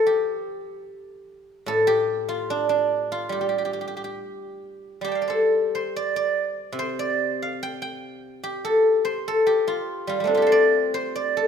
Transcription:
Already playing: F3 F4 A4 C5
0.07 G4
1.66 A2 A4
1.87 G4
2.29 F4
2.50 D4
2.69 D4
3.12 F4
3.29 G3 G4
3.41 G4
3.49 G4
3.58 G4
3.65 G4
3.73 G4
3.81 G4
3.88 G4
3.97 G4
4.04 G4
5.01 G3 G4
5.08 G5 A5
5.15 F5
5.22 D5
5.28 A4 C5
5.75 C5
5.96 D5
6.16 D5
6.72 C3
6.79 C5
6.99 D5
7.42 F5
7.63 G5
7.82 G5
8.44 G4
8.65 A4
9.05 C5
9.28 A4
9.47 G4
9.68 F4
10.07 G3 F4
10.20 G3 A3
10.25 C4 D4
10.34 F4 G4
10.42 A4
10.47 C5
10.52 D5
10.94 C5
11.16 D5
11.37 C5

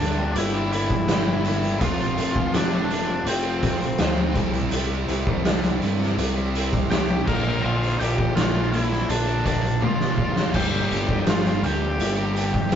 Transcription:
Already playing: G2 D3 D4 D5
0.00 D2 G2 D3 G3 A#3 D4 G4, closed hi-hat
0.17 G3 A#3 D4 G4, muted distorted electric guitar stroke
0.35 G1 G3 A#3 D4 E4 G4 E5, closed hi-hat
0.53 G3 A#3 D4 G4
0.72 G3 A#3 D4 E4 G4 E5, closed hi-hat
0.90 muted distorted electric guitar stroke, kick, closed hi-hat
1.06 G1 G2 D3 G3 A#3 D4 G4, snare, closed hi-hat
1.25 G3 A#3 D4 G4
1.42 G3 A#3 D4 G4, closed hi-hat
1.61 G3 A#3 D4 G4, closed hi-hat
1.78 F1 F2 C3 F3 A3 C4 F4, kick, closed hi-hat
1.84 F5
2.00 closed hi-hat
2.15 F1 F3 A3 C4 F4, closed hi-hat
2.36 kick
2.51 F1 F2 C3 F3 A3 C4 D4 F4, snare, closed hi-hat
2.56 D5
2.71 F3 A3 C4 F4
2.89 F2 C3 F3 A3 C4 F4, muted overdriven electric guitar stroke, closed hi-hat
3.06 F3 A3 C4 F4, muted distorted electric guitar stroke
3.25 F1 F3 A3 C4 F4, closed hi-hat
3.29 C5
3.43 F3 A3 C4 F4
3.62 F1 F3 A3 C4 F4, kick, closed hi-hat
3.81 muted distorted electric guitar stroke, closed hi-hat
3.98 D2 F2 C3 F3 A3 C4 F4, snare, closed hi-hat
4.17 F3 A3 C4 F4
4.35 C2 C3 G3 C4 E4, kick, closed hi-hat
4.53 G3 C4 E4, closed hi-hat
4.70 C2 C3 G3 C4 E4, closed hi-hat
5.08 C2 C3 G3 C4 E4, closed hi-hat
5.27 kick
5.44 C2 C3 G3 C4 E4, snare, closed hi-hat
5.62 G3 C4 E4, closed hi-hat
5.80 G2 C3 G3 C4 E4, muted overdriven electric guitar stroke, closed hi-hat
5.99 G3 C4 E4, muted distorted electric guitar stroke, snare
6.17 C2 C3 G3 C4 E4, closed hi-hat
6.36 G3 C4 E4
6.54 C3 G3 C4 E4, closed hi-hat
6.72 muted distorted electric guitar stroke, kick, closed hi-hat
6.90 C2 C3 G3 C4 E4 G4 G5, snare, closed hi-hat
7.08 G3 C4 E4
7.26 A#1 A#2 D3 F3 A#3 D4 A#4 A#5, kick, crash
7.44 F3 A#3 D4
7.62 A#1 A#2 D3 F3 A#3 D4 F4 F5
7.83 closed hi-hat
7.98 A#1 D3 F3 A#3 D4 G4 G5, closed hi-hat
8.18 kick
8.35 A#1 A#2 D3 F3 A#3 D4 F4 F5, snare, closed hi-hat
8.54 F3 A#3 D4
8.71 D3 F3 A#3 D4 E4 E5, muted overdriven electric guitar stroke, closed hi-hat
8.91 F3 A#3 D4, muted distorted electric guitar stroke, snare
9.08 A#1 D3 F3 A#3 D4 D5, closed hi-hat
9.27 F3 A#3 D4
9.45 A#1 A#2 D3 F3 A#3 D4 D5, kick, closed hi-hat
9.63 muted distorted electric guitar stroke, closed hi-hat
9.81 F1 A#2 D3 F3 A#3 D4 F4 F5, high tom
10.00 F3 A#3 D4, snare
10.18 D3 F3 A#3, kick
10.22 D4
10.36 F3 A#3 D4, snare
10.54 G1 G2 D3 G3 A#3 D4 G4 G5, kick, crash
10.90 G1 D3 G3 A#3 D4, closed hi-hat
11.09 kick
11.26 G1 G2 D3 G3 A#3 D4 F4 F5, snare, closed hi-hat
11.46 G3 A#3 D4, closed hi-hat
11.62 D2 G2 D3 G3 A#3 D4 G4 G5, muted overdriven electric guitar stroke, closed hi-hat
11.80 A#3 D4, muted distorted electric guitar stroke
11.84 G3
11.99 G1 D3 G3 A#3 D4, closed hi-hat
12.17 G3 A#3 D4
12.33 D3 G3 A#3 D4, closed hi-hat
12.52 muted distorted electric guitar stroke, kick, closed hi-hat
12.71 G1 G2 D3 G3 A#3 D4, snare, closed hi-hat

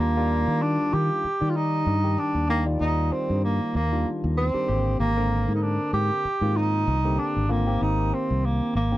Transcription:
0.00 D#2 D#3 G3 A#3 D4 F4
0.17 D#3 G3 D4 F4
0.47 D#3
0.62 D4
0.93 D#3 G4
1.24 muted fretless electric bass stroke
1.41 D#3 G3 G4 D5
1.50 F4
1.56 D#4
1.86 G2
2.04 D#3 G3 D4 G4
2.19 D4
2.34 D#2
2.49 D#3 G3 A#3 D4 G4
2.66 D#3 G3 F4 D5
2.81 D#2 D#4
3.12 C4
3.30 G2
3.45 A#3
3.75 D#2 A#3
3.92 D#3 G3 D4 F4
4.24 D#2
4.37 C4
4.54 D#3 G3 D4 G4, muted fretless electric bass stroke
4.68 G#1 D3 A#3 C4 G4
5.00 G#1 A#3
5.17 D3 A#3 C4 A#4
5.48 G#2
5.55 D#4
5.62 D4
5.93 G#2 G4
6.25 muted fretless electric bass stroke
6.41 G#2 D#3 A#3 C4 F4
6.57 D#4
6.87 C2
7.05 D3 A#3 C4 G4
7.19 D4
7.36 G#1
7.49 D3 A#3 C4 F4
7.67 D#3 A#3 C4 G4
7.81 G#1 D#4
8.14 C4
8.30 C2
8.45 A#3
8.75 G#1 A#3
8.92 D3 A#3 C4 G4

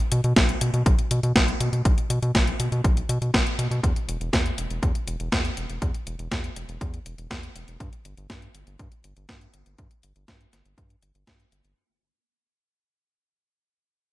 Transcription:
0.12 B2, closed hi-hat
0.24 B2, closed hi-hat
0.36 B1, kick, snare, closed hi-hat
0.49 closed hi-hat
0.61 B2, closed hi-hat
0.74 B2, closed hi-hat
0.86 B1, kick, closed hi-hat
0.99 closed hi-hat
1.11 B2, closed hi-hat
1.23 B2, closed hi-hat
1.36 B1, kick, snare, closed hi-hat
1.48 closed hi-hat
1.60 B2, closed hi-hat
1.73 B2, closed hi-hat
1.85 B1, kick, closed hi-hat
1.98 closed hi-hat
2.10 B2, closed hi-hat
2.22 B2, closed hi-hat
2.35 B1, kick, snare, closed hi-hat
2.47 closed hi-hat
2.60 B2, closed hi-hat
2.72 B2, closed hi-hat
2.84 B1, kick, closed hi-hat
2.97 closed hi-hat
3.09 B2, closed hi-hat
3.22 B2, closed hi-hat
3.34 B1, kick, snare, closed hi-hat
3.47 closed hi-hat
3.59 B2, closed hi-hat
3.71 B2, closed hi-hat
3.83 E2, kick, closed hi-hat
3.96 closed hi-hat
4.08 E1, closed hi-hat
4.21 E1, closed hi-hat
4.33 E2, kick, snare, closed hi-hat
4.46 closed hi-hat
4.58 E1, closed hi-hat
4.70 E1, closed hi-hat
4.83 E2, kick, closed hi-hat
4.95 closed hi-hat
5.07 E1, closed hi-hat
5.20 E1, closed hi-hat
5.32 E2, kick, snare, closed hi-hat
5.45 closed hi-hat
5.57 E1, closed hi-hat
5.69 E1, closed hi-hat
5.82 E2, kick, closed hi-hat
5.94 closed hi-hat
6.07 E1, closed hi-hat
6.19 E1, closed hi-hat
6.31 E2, kick, snare, closed hi-hat
6.44 closed hi-hat
6.56 E1, closed hi-hat
6.69 E1, closed hi-hat
6.81 E2, kick, closed hi-hat
6.94 closed hi-hat
7.06 E1, closed hi-hat
7.18 E1, closed hi-hat
7.31 E2, kick, snare, closed hi-hat
7.43 closed hi-hat
7.55 E1, closed hi-hat
7.68 E1, closed hi-hat
7.80 G2, kick, closed hi-hat
7.93 closed hi-hat
8.05 G1, closed hi-hat
8.17 G1, closed hi-hat
8.30 G2, kick, snare, closed hi-hat
8.42 closed hi-hat
8.55 G1, closed hi-hat
8.67 G1, closed hi-hat
8.79 G2, kick, closed hi-hat
8.92 closed hi-hat
9.04 G1, closed hi-hat
9.17 G1, closed hi-hat
9.29 G2, kick, snare, closed hi-hat
9.41 closed hi-hat
9.54 G1, closed hi-hat
9.66 G1, closed hi-hat
9.78 G2, kick, closed hi-hat
9.91 closed hi-hat
10.03 G1, closed hi-hat
10.16 G1, closed hi-hat
10.28 G2, kick, snare, closed hi-hat
10.41 closed hi-hat
10.53 G1, snare, closed hi-hat
10.65 G1, closed hi-hat
10.78 G2, kick, closed hi-hat
10.90 closed hi-hat
11.02 G1, closed hi-hat
11.15 G1, closed hi-hat
11.27 G2, kick, snare, closed hi-hat
11.40 closed hi-hat
11.52 G1, closed hi-hat
11.64 G1, closed hi-hat

